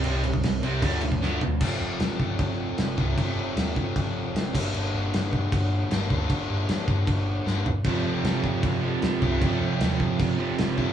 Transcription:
<<
  \new Staff \with { instrumentName = "Overdriven electric guitar" } { \clef bass \time 4/4 \key f \mixolydian \tempo 4 = 154 <c g c'>8 <c g>8 <c g>8 <c g c'>8 <d f a>8 <d f>8 <d f a>8 <d f>8 | <f, c f a c'>2.~ <f, c f a c'>8 <f, c f a c'>8 | <f, c f a c'>2.~ <f, c f a c'>8 <g, d g bes d'>8~ | <g, d g bes d'>2. <g, d g bes d'>8 <g, d g bes d'>8~ |
<g, d g bes d'>2. <g, d g bes d'>8 r8 | <f, c f a c'>2.~ <f, c f a c'>8 <f, c f a c'>8 | <f, c f a c'>2.~ <f, c f a c'>8 <f, c f a c'>8 | }
  \new Staff \with { instrumentName = "Distorted electric guitar" } { \clef bass \time 4/4 \key f \mixolydian <c g c'>8 <c g>8 <c g>8 <c g c'>8 <d a d'>8 <d a>8 <d a d'>8 <d a>8 | r1 | r1 | r1 |
r1 | <f, c f>2~ <f, c f>8 <f, c f>8 <f, c f>4 | <f, c f>2~ <f, c f>8 <f, c f>8 <f, c f>4 | }
  \new Staff \with { instrumentName = "Picked electric bass" } { \clef bass \time 4/4 \key f \mixolydian c,8 c,8 c,8 c,8 d,8 d,8 d,8 d,8 | f,,8 f,,8 f,,4 f,,4 f,,8 c,8 | f,,8 f,,8 ees,8 f,,8 f,,4 f,,8 g,,8 | g,,8 g,,8 g,,4 g,,4 g,,8 d,8 |
g,,8 g,,8 f,8 g,,8 g,,4 g,,8 g,,8 | f,,8 f,,8 f,,4 f,,4 f,,8 c,8 | f,,8 f,,8 ees,8 f,,8 f,,4 f,,8 f,,8 | }
  \new DrumStaff \with { instrumentName = "Drums" } \drummode { \time 4/4 cymc8 cymc16 bd16 <cymc sn>8 cymc8 <cymc bd>8 cymc16 bd16 sn8 tomfh8 | <cymc bd>4 <cymc sn>8 bd8 <cymc bd>4 <cymc sn>8 bd8 | <cymc bd>4 <cymc sn>8 bd8 <cymc bd>4 <cymc sn>8 <cymc bd>8 | cymc4 <cymc sn>8 bd8 <cymc bd>4 <cymc sn>8 bd8 |
<cymc bd>4 <cymc sn>8 bd8 <cymc bd>4 sn8 tomfh8 | <cymc bd>4 <cymc sn>8 bd8 <cymc bd>4 <cymc sn>8 bd8 | <cymc bd>4 <cymc sn>8 bd8 <cymc bd>4 <cymc sn>8 bd8 | }
>>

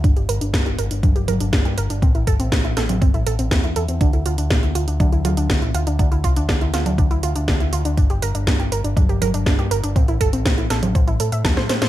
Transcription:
<<
  \new Staff \with { instrumentName = "Synth arpeggio sound" } { \time 4/4 \key d \minor \tempo 4 = 121 d'16 g'16 bes'16 d'16 d'16 g'16 bes'16 d'16 d'16 g'16 bes'16 d'16 d'16 g'16 bes'16 d'16 | c'16 e'16 a'16 c'16 c'16 e'16 a'16 c'16 c'16 e'16 a'16 c'16 c'16 e'16 a'16 c'16 | d'16 e'16 f'16 d'16 d'16 e'16 f'16 d'16 d'16 e'16 f'16 d'16 d'16 e'16 f'16 d'16 | d'16 e'16 f'16 d'16 d'16 e'16 f'16 d'16 d'16 e'16 f'16 d'16 d'16 e'16 f'16 d'16 |
d'16 g'16 bes'16 d'16 d'16 g'16 bes'16 d'16 d'16 g'16 bes'16 d'16 d'16 g'16 bes'16 d'16 | c'16 e'16 a'16 c'16 c'16 e'16 a'16 c'16 c'16 e'16 a'16 e''16 a''16 c''16 c''16 c''16 | }
  \new Staff \with { instrumentName = "Picked electric bass" } { \clef bass \time 4/4 \key d \minor g,,16 g,,16 g,,16 g,,16 g,16 g,,16 g,,16 g,,16 g,,16 g,,16 g,,16 g,,16 g,,16 g,16 g,,16 g,,16 | a,,16 a,,16 g,,16 a,,16 a,,16 a,,16 a,,16 a,,16 g,,16 a,,16 a,,16 a,,16 e,16 e,16 e,16 e,16 | d,16 d,16 d,16 d,16 a,,16 d,16 d,16 d,16 d,16 d,16 d,16 d,16 d,16 a,,16 d,16 d,16 | d,16 d,16 c,16 d,16 d,16 d,16 d,16 d,16 d,16 d,16 d,16 d,16 d,16 d,16 d,16 d,16 |
g,,16 g,,16 g,,16 g,,16 g,16 g,,16 g,,16 g,,16 g,,16 g,,16 g,,16 g,,16 g,,16 g,16 g,,16 g,,16 | a,,16 a,,16 g,,16 a,,16 a,,16 a,,16 a,,16 a,,16 a,,16 a,,16 a,16 a,16 e,16 a,16 a,16 a,16 | }
  \new DrumStaff \with { instrumentName = "Drums" } \drummode { \time 4/4 <hh bd>16 hh16 hh16 hh16 <hh bd sn>16 hh16 hh16 hh16 <cgho hh bd>16 hh16 <cgho hh>16 hh16 <hh bd sn>16 hh16 hh16 hh16 | <hh bd>16 hh16 <hh bd>16 hh16 <hh bd sn>16 hh16 <hh sn>16 <cgho hh>16 <hh bd>16 hh16 hh16 hh16 <hh bd sn>16 hh16 hh16 hh16 | <hh bd>16 hh16 hh16 hh16 <hh bd sn>16 hh16 hh16 hh16 <cgho hh bd>16 hh16 <cgho hh>16 hh16 <hh bd sn>16 hh16 hh16 hh16 | <hh bd>16 hh16 <hh bd>16 hh16 <hh bd sn>16 hh16 <hh sn>16 <cgho hh>16 <hh bd>16 hh16 hh16 hh16 <hh bd sn>16 hh16 hh16 hh16 |
<hh bd>16 hh16 hh16 hh16 <hh bd sn>16 hh16 hh16 hh16 <cgho hh bd>16 hh16 <cgho hh>16 hh16 <hh bd sn>16 hh16 hh16 hh16 | <hh bd>16 hh16 <hh bd>16 hh16 <hh bd sn>16 hh16 <hh sn>16 <cgho hh>16 <hh bd>16 hh16 hh16 hh16 <cgho hh bd sn>16 <hh sn>16 <hh sn>16 <hh sn>16 | }
>>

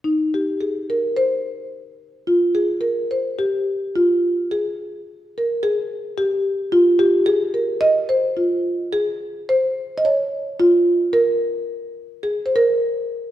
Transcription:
\new Staff \with { instrumentName = "Marimba" } { \time 2/4 \key aes \major \tempo 4 = 108 ees'8 g'8 aes'8 bes'8 | c''4. r8 | f'8 aes'8 bes'8 c''8 | g'4 f'4 |
aes'4. bes'8 | aes'4 g'4 | f'8 g'8 aes'8 bes'8 | ees''8 c''8 f'4 |
aes'4 c''8.~ c''32 ees''32 | des''4 f'4 | bes'2 | aes'16. c''32 bes'4. | }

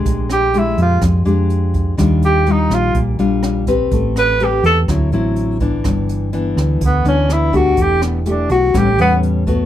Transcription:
<<
  \new Staff \with { instrumentName = "Tenor saxophone" } { \time 4/4 \key g \lydian \tempo 4 = 124 r8 g'8 e'8 f'8 r2 | r8 g'8 ees'8 f'8 r2 | r8 b'8 g'8 a'8 r2 | r2 b8 cis'8 e'8 fis'8 |
g'8 b8 d'8 fis'8 g'8 b8 r4 | }
  \new Staff \with { instrumentName = "Nylon-string guitar" } { \time 4/4 \key g \lydian << { <gis d' g'>4 <gis d' g'>4. <gis d' g'>4. | <g d' f'>4 <g d' f'>4. <g d' f'>4 <c' g' b'>8~ | <c' g' b'>4 <c' g' b'>4 <fis c' e'>8 <fis c' e'>4 <e b d'>8~ | <e b d'>4 <e b d'>4 r8 <e b d'>4 <a d' g'>8~ |
<a d' g'>4 <a d' g'>4 <g b cis'>8 <g b cis'>4 <a b fis'>8 | } \\ { bes,2 f2 | ees2 bes,2 | a2 d2 | g,2 d2 |
e2 a,2 | } >> }
  \new Staff \with { instrumentName = "Fingered electric bass" } { \clef bass \time 4/4 \key g \lydian bes,,4. f,8 f,8 f,4. | ees,4. bes,,8 bes,,8 bes,,4. | a,,4. e,8 d,8 a,,4. | g,,4. d,8 d,8 d,4. |
e,,4. b,,8 a,,8 e,4. | }
  \new DrumStaff \with { instrumentName = "Drums" } \drummode { \time 4/4 <hh bd>8 <hh ss>8 hh8 hh8 <hh bd ss>8 hh8 hh8 <hh bd>8 | <hh bd ss>8 hh8 hh8 <hh ss>8 <hh bd>8 hh8 <hh ss>8 <hh bd>8 | <hh bd>8 <hh ss>8 hh8 hh8 <hh bd ss>8 hh8 hh8 <hh bd>8 | <hh bd ss>8 hh8 hh8 <hh ss>8 <hh bd>8 hh8 <hh ss>8 <hh bd>8 |
<hh bd>8 <hh ss>8 hh8 hh8 <hh bd ss>8 hh8 hh8 <hh bd>8 | }
>>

